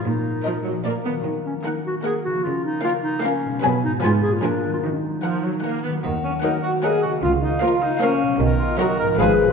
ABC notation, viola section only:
X:1
M:3/4
L:1/8
Q:1/4=151
K:Ebm
V:1 name="Viola section"
z2 F, G, B, C | z2 B,2 B,2 | z2 B,2 B,2 | ^F,2 =F,2 F,2 |
z2 F, G, B, C | z2 B,2 B,2 | z2 B,2 B,2 | z2 ^F,2 =F,2 |]